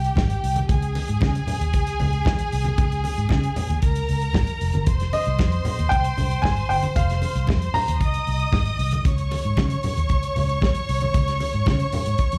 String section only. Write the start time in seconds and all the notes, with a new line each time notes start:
Already playing: G4 G5
0.69 G#4 G#5
3.82 A#4 A#5
4.86 C5 C6
8.01 D#5 D#6
9.06 C#5 C#6